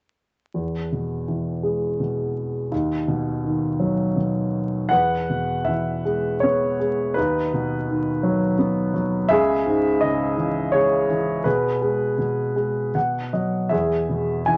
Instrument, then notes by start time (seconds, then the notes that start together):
upright piano
0.54 E2
0.92 B2
1.28 E3
1.63 G#3
1.99 B2
2.72 D#2
3.08 B2
3.44 D#3
3.80 F#3
4.16 B2
4.89 E2 B4 F#5
5.29 B2
5.65 E3 E5
6.05 G#3
6.40 B3 C#5
6.80 G#3
7.14 D#2 D#4 B4
7.54 B2
7.88 D#3
8.23 F#3
8.59 B3
8.94 F#3
9.29 C#2 G#4 E5
9.66 G#2
10.01 C#3 D#5
10.38 E3
10.72 G#3 C#5
11.10 E3
11.44 B2 G#4 B4
11.82 G#3
12.18 B2
12.56 G#3
12.95 B2 F#5
13.33 F#3 D#5
13.69 E2 G#4 E5
14.09 B2
14.46 E3 G#5